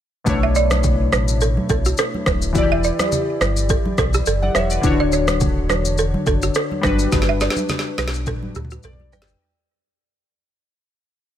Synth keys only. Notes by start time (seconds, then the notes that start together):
0.24 B2 A3 D4 E4
0.29 C#5
2.53 E3 E4 F#4
2.58 D5
2.63 G4
4.42 D5 F#5
4.55 C#5 E5
4.71 B4 D5
4.81 D3 D4 E4
4.86 C#5
4.91 F#4
6.81 G3 D4 F#4
6.86 B4
8.84 D5
9.12 G5